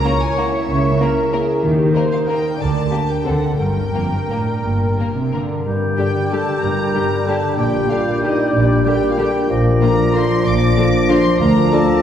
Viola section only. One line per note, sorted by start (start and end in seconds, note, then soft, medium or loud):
0.05 0.67 C#5 medium
0.69 0.99 C#5 medium
1.00 1.33 A#4 medium
1.33 1.63 G#4 medium
1.63 1.94 G4 medium
1.94 2.28 C5 medium
2.28 2.59 A#4 soft
2.59 2.90 D5 soft
2.90 3.24 G4 soft
3.26 3.59 A4 soft
3.60 5.51 A#4 soft
5.98 6.06 D3 soft
5.98 6.06 G3 soft
6.32 6.40 D3 soft
6.32 6.40 G3 soft
6.94 7.02 D3 soft
6.94 7.02 G3 soft
7.27 7.35 D3 soft
7.27 7.35 G3 soft
7.91 7.99 D3 soft
7.91 7.99 G3 soft
8.23 8.31 D3 soft
8.23 8.31 G3 soft
8.86 8.94 D3 soft
8.86 8.94 G3 soft
9.19 9.27 D3 soft
9.19 9.27 G3 soft
9.82 9.90 D3 soft
9.82 9.90 A#3 soft
10.14 10.22 D3 soft
10.14 10.22 A#3 soft
10.77 10.85 D3 soft
10.77 10.85 A#3 soft
11.09 11.17 D3 soft
11.09 11.17 A#3 soft
11.72 11.80 D3 soft
11.72 11.80 A#3 soft